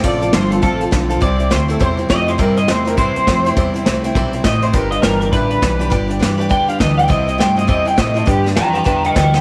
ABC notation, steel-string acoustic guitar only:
X:1
M:4/4
L:1/8
Q:"Swing" 1/4=204
K:C
V:1 name="Steel-string acoustic guitar"
[F,A,CFA] [CFA] [A,CFA] [CFA] [F,A,CFA] [CFA] [A,CFA] [CFA] | [C,E,G,CEc] [G,CEc] [G,CEc] [G,CEc] [C,E,G,CEc] [G,CEc] [G,CEc] [G,CEc] | [C,E,G,CEc] [G,CEc] [G,CEc] [G,CEc] [C,E,G,CEc] [G,CEc] [G,CEc] [G,CEc] | [C,E,G,CEc] [G,CEc] [G,CEc] [G,CEc] [C,E,G,CEc] [G,CEc] [G,CEc] [G,CEc] |
[G,DGB] [DGB] [G,DGB] [DGB] [G,DGB] [DGB] [G,DGB] [DGB] | [G,DGB] [DGB] [G,DGB] [DGB] [G,DGB] [DGB] [G,DGB] [DGB] | [C,E,G,CEc] [G,CEc] [G,CEc] [G,CEc] [C,E,G,CEc] [G,CEc] [G,CEc] [G,CEc] | [G,DGB] [DGB] [G,DGB] [DGB] [G,DGB] [DGB] [G,DGB] [DGB] |]